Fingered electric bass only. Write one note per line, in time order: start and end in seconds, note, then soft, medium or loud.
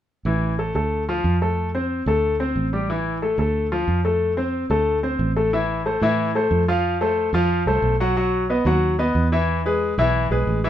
0.25 0.71 A1 medium
0.75 1.21 D2 medium
1.24 2.01 F2 medium
2.06 2.52 D2 medium
2.56 3.33 A1 medium
3.38 3.84 D2 medium
3.88 4.64 F2 medium
4.70 5.16 D2 medium
5.19 5.96 A1 medium
6.02 6.48 A2 medium
6.51 7.28 F2 medium
7.33 7.64 F2 medium
7.66 7.82 C2 medium
7.82 8.60 B1 medium
8.65 9.11 D#2 medium
9.15 9.92 E2 medium
9.98 10.29 B1 medium
10.31 10.46 B1 medium
10.47 10.70 A1 medium